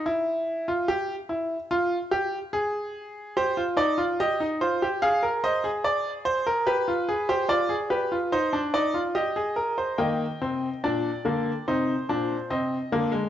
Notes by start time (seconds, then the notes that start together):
0.06 E4
0.68 F4
0.88 G4
1.29 E4
1.71 F4
2.11 G4
2.53 G#4
3.37 G4 C5
3.57 F4
3.77 D#4 D5
3.98 F4
4.20 G4 D#5
4.40 D#4
4.61 F4 C5
4.82 G4
5.02 G#4 F5
5.23 A#4
5.44 C5 D#5
5.64 G#4
5.84 D5
6.25 C5
6.47 A#4
6.67 G4 B4
6.88 F4
7.09 G#4
7.29 G4 C5
7.49 F4 D5
7.69 G#4
7.90 G4 B4
8.12 F4
8.32 D#4 C5
8.53 D4
8.74 D#4 D5
8.94 F4
9.15 G4 D#5
9.36 G#4
9.56 A#4
9.78 C5
9.98 D#3 A#3 D#5 G5
10.41 C3 C4
10.84 A#2 D4 D5
11.25 D3 A#3
11.68 C3 D#4 C5
12.09 A#2 D4
12.50 C3 C4 D#5
12.92 D3 A#3
13.12 G#3